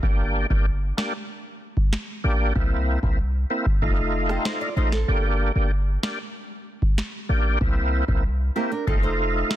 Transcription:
0.03 808-style bass G1, tonewheel organ A#3 D4 G4, kick
0.50 808-style bass G1, tonewheel organ A#3 D4 G4, kick
0.97 tonewheel organ A#3 D4 G4, finger snap, snare
1.77 kick
1.93 finger snap, snare
2.24 808-style bass A1, tonewheel organ A#3 D4 G4
2.55 808-style bass C2, tonewheel organ A#3 C4 E4, kick
3.03 808-style bass C2, tonewheel organ A#3 C4 E4, kick
3.50 tonewheel organ A#3 C4 E4
3.66 kick
3.82 808-style bass F1, tonewheel organ A3 D#4 F4, kick
4.29 nylon-string guitar C4 A4, cross-stick
4.45 nylon-string guitar D#4 C5, finger snap, snare
4.61 nylon-string guitar F4 D5
4.77 808-style bass A1, tonewheel organ A3 D#4 F4, nylon-string guitar D#4 C5
4.92 nylon-string guitar C4 A4, snare
5.08 808-style bass G1, tonewheel organ A#3 D4 G4
5.56 808-style bass G1, tonewheel organ A#3 D4 G4
6.03 tonewheel organ A#3 D4 G4, finger snap, snare
6.82 kick
6.98 finger snap, snare
7.29 808-style bass A1, tonewheel organ A#3 D4 G4
7.61 808-style bass C2, tonewheel organ A#3 C4 E4, kick
8.08 808-style bass C2, tonewheel organ A#3 C4 E4, kick
8.56 tonewheel organ A#3 C4 E4, nylon-string guitar A#3 G4
8.72 nylon-string guitar D4 A#4
8.87 808-style bass F1, tonewheel organ A3 D#4 F4, nylon-string guitar C4 A4, kick
9.03 nylon-string guitar D#4 C5
9.51 finger snap, snare

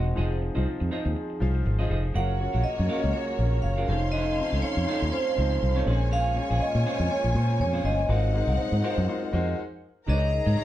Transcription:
Already playing: fingered electric bass E1, french horn section G#3 C4 F#4, grand piano G#3 D#4 F#4 A#4 C5 D#5 F#5
0.07 muted clean electric guitar stroke
0.15 fingered electric bass F1, grand piano F3 F4 G#4 C5 D#5, french horn section F3 D#4 G#4, clean electric guitar D#4 G#4 C5 D#5
0.41 muted clean electric guitar stroke
0.55 fingered electric bass C2, grand piano F3 F4 G#4 C5 D#5, clean electric guitar D#4 G#4 C5 D#5
0.67 muted fingered electric bass stroke
0.80 fingered electric bass F2, muted clean electric guitar stroke
0.91 grand piano F3 F4 G#4 C5 D#5, clean electric guitar D#4 G#4 C5 D#5
1.05 fingered electric bass D#2, muted clean electric guitar stroke
1.16 muted clean electric guitar stroke
1.30 muted clean electric guitar stroke
1.40 fingered electric bass C2, grand piano F3 F4 G#4 C5 F5
1.55 muted clean electric guitar stroke
1.65 fingered electric bass G#1, muted clean electric guitar stroke
1.79 grand piano F3 F4 G#4 C5 D#5, clean electric guitar D#4 G#4 C5 D#5
1.90 fingered electric bass F1, clean electric guitar D#4 G#4 C5 D#5
2.04 muted clean electric guitar stroke
2.14 fingered electric bass F#1, grand piano F#3 C#4 F4 G#4 A#4, french horn section F#3 C#4 A#4, string section A#3 F#4 C#5, clean electric guitar C#4 F#4 A#4 F5, vibraphone F#5
2.39 grand piano F#3 C#4 F4 G#4 C#5, muted clean electric guitar stroke
2.53 fingered electric bass A#1, clean electric guitar C#4 F#4 A#4 F5
2.64 vibraphone D#5, muted fingered electric bass stroke
2.78 fingered electric bass F#2, muted clean electric guitar stroke
2.89 grand piano F#3 C#4 F4 G#4 A#4, clean electric guitar C#4 F#4 A#4 F5
3.03 fingered electric bass C#2, muted clean electric guitar stroke
3.13 grand piano F#3 C#4 F4 G#4 A#4, vibraphone C#5, muted clean electric guitar stroke
3.28 muted clean electric guitar stroke
3.38 fingered electric bass A#1, grand piano F#3 C#4 F4 G#4 A#4
3.52 muted clean electric guitar stroke
3.62 fingered electric bass F#1, vibraphone F5, muted clean electric guitar stroke
3.77 grand piano F#3 C#4 F4 G#4 A#4, clean electric guitar C#4 F#4 A#4 F5
3.88 fingered electric bass F1, grand piano F3 D#4 A4 C5 C#5, french horn section F3 A3 D#4, string section C#4 F5 C6, clean electric guitar D#4 A4 C#5 F5
4.02 muted clean electric guitar stroke
4.12 clean electric guitar D#4 A4 C#5 F5, vibraphone D#5
4.38 grand piano F3 C4 D#4 A4 C5, muted clean electric guitar stroke
4.52 fingered electric bass C#2, clean electric guitar D#4 A4 C#5 F5
4.62 vibraphone C#5, muted fingered electric bass stroke
4.77 fingered electric bass F2, muted clean electric guitar stroke
4.87 grand piano F3 C4 D#4 A4 D#5, clean electric guitar D#4 A4 C#5 F5
5.02 fingered electric bass D#2, muted clean electric guitar stroke
5.12 grand piano F3 C4 D#4 A4 C#5, vibraphone C5, muted clean electric guitar stroke
5.26 muted clean electric guitar stroke
5.37 fingered electric bass C#2, grand piano F3 C4 D#4 A4 C5
5.51 muted clean electric guitar stroke
5.62 fingered electric bass C2, muted clean electric guitar stroke
5.75 grand piano F3 C4 D#4 A4 C#5, clean electric guitar D#4 A4 C#5 F5
5.86 fingered electric bass A#1, grand piano A#2 A#3 C#4 G#4 C5, french horn section G#3 A#3 C#4, clean electric guitar C#4 G#4 C5 F5, string section F4 C#5 G#5
6.01 muted clean electric guitar stroke
6.11 clean electric guitar C#4 G#4 C5 F5, vibraphone F5
6.35 grand piano A#2 A#3 C#4 G#4 D#5, muted clean electric guitar stroke
6.50 fingered electric bass A#1, clean electric guitar C#4 G#4 C5 F5
6.61 vibraphone D#5
6.75 fingered electric bass A#2, muted clean electric guitar stroke
6.85 grand piano A#2 A#3 C#4 G#4 C5, clean electric guitar C#4 G#4 C5 F5
6.99 fingered electric bass F2, muted clean electric guitar stroke
7.10 grand piano A#2 A#3 C#4 G#4 C#5, vibraphone C#5, muted clean electric guitar stroke
7.23 fingered electric bass A#1, muted clean electric guitar stroke
7.34 grand piano A#2 A#3 C#4 G#4 C5, fingered electric bass A#2
7.48 muted clean electric guitar stroke
7.59 fingered electric bass F2, vibraphone C#5, muted clean electric guitar stroke
7.73 grand piano A#2 A#3 C#4 G#4 C5, clean electric guitar C#4 G#4 C5 F5
7.84 fingered electric bass G1, clean electric guitar C#4 G#4 C5 F5, vibraphone D#5
7.99 muted clean electric guitar stroke
8.09 fingered electric bass G#1, french horn section F#3 C4, grand piano G#3 D#4 F4 F#4 A#4 C5, clean electric guitar C4 F#4 A#4 F5, string section D#4 C5 F#5
8.33 grand piano G#3 D#4 F#4 G#4 A#4 C5, muted clean electric guitar stroke
8.47 fingered electric bass C2, clean electric guitar C4 F#4 A#4 F5
8.58 muted fingered electric bass stroke
8.72 fingered electric bass G#2, muted clean electric guitar stroke
8.82 grand piano G#3 D#4 F4 F#4 A#4 C5, clean electric guitar C4 F#4 A#4 F5
8.98 fingered electric bass F#2, muted clean electric guitar stroke
9.08 grand piano G#3 D#4 F4 F#4 A#4 C5, muted clean electric guitar stroke
9.23 muted clean electric guitar stroke
9.33 fingered electric bass F2, grand piano G#3 D#4 F4 F#4 A#4 C5
9.48 muted clean electric guitar stroke
10.06 fingered electric bass C#2, french horn section C#3 C#4 D#4 G#4, horn section D#3 C#4 G#4, grand piano D#4 G#4 C#5, clean electric guitar D#4 G#4 C#5 D#5, string section A#4 A#5, vibraphone D#5
10.33 muted clean electric guitar stroke
10.46 fingered electric bass G#2, clean electric guitar D#4 G#4 C#5 D#5
10.56 grand piano D#4 G#4 C#5, muted fingered electric bass stroke

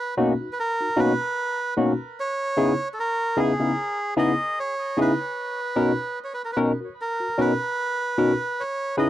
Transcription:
Already playing: melodica B4
0.17 tine electric piano B2 A#3 C#4 D#4 F#4
0.40 tine electric piano D#4 F#4
0.53 melodica B4
0.60 melodica A#4
0.80 tine electric piano D#4 F#4
0.96 tine electric piano B2 A#3 C#4 D#4 F#4, melodica B4
1.77 tine electric piano B2 A#3 C#4 D#4 F#4
2.20 melodica C#5
2.57 tine electric piano C#3 B3 D#4 E4 G#4
2.94 melodica A4
3.00 melodica A#4
3.37 tine electric piano C#3 B3 D#4 E4 G#4, melodica G#4
3.60 tine electric piano C#3 B3 D#4 E4 G#4
4.17 tine electric piano C#3 B3 D#4 E4 G#4, melodica D#5
4.60 melodica C#5
4.97 tine electric piano C#3 B3 D#4 E4 G#4
5.01 melodica B4
5.76 tine electric piano B2 C#4 D#4 F#4 A#4
6.24 melodica C#5
6.34 melodica B4
6.45 melodica A#4
6.53 tine electric piano B2, melodica B4
6.57 tine electric piano C#4 D#4 F#4 A#4
6.81 tine electric piano F#4 A#4
7.01 melodica A#4
7.20 tine electric piano F#4 A#4
7.38 tine electric piano B2 C#4 D#4 F#4 A#4, melodica B4
8.18 tine electric piano B2 C#4 D#4 F#4 A#4
8.60 melodica C#5
8.97 tine electric piano C#3 D#4 E4 G#4 B4, melodica D#5

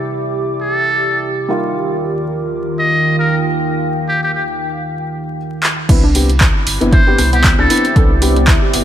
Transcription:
Already playing: analog synth pad C3 E4 G4 B5 D6, felt piano C4 D4 E4, ambient pad G4 E5 D6
0.61 muted trumpet A4
1.48 analog synth pad D#3 F4 A#4, ambient pad D#3, felt piano G3 A#3 D#4 F4
1.87 ambient pad A#4
1.91 ambient pad G5
1.99 ambient pad F5
2.79 muted trumpet D#5
3.19 muted trumpet A#4
4.08 muted trumpet G4
4.23 muted trumpet G4
4.34 muted trumpet G4
5.63 clap
5.89 sub bass C2, felt piano B3 C4 D4 E4, synth pluck B3, ambient pad C4, analog synth pad E4 G4 B5 D6, kick, closed hi-hat, crash
6.04 synth pluck D4
6.12 felt piano B3 C4 D4 G4, ambient pad D5 E5, open hi-hat
6.23 ambient pad G4
6.29 closed hi-hat
6.41 kick, clap, closed hi-hat
6.67 sub bass G1, open hi-hat
6.81 sub bass G1, felt piano B3 C4 D4 E4, synth pluck B3, closed hi-hat
6.93 synth pluck E4, muted trumpet C5, kick, closed hi-hat
7.07 felt piano B3 C4 D4 G4, synth pluck G4
7.18 sub bass C2, synth pluck B3, cross-stick, open hi-hat
7.33 synth pluck B3, muted trumpet G4, closed hi-hat
7.44 kick, clap, closed hi-hat
7.59 sub bass C2, synth pluck D4, muted trumpet A4, cross-stick
7.70 felt piano B3 C4 D4 E4, open hi-hat
7.77 closed hi-hat
7.85 closed hi-hat
7.96 sub bass C2, felt piano B3 C4 D4 A4, kick, closed hi-hat
8.21 felt piano B3 C4 D4 G4, open hi-hat
8.36 synth pluck B3, closed hi-hat
8.48 synth pluck E4, kick, clap, closed hi-hat
8.62 synth pluck G4
8.74 sub bass G1, synth pluck B3, open hi-hat

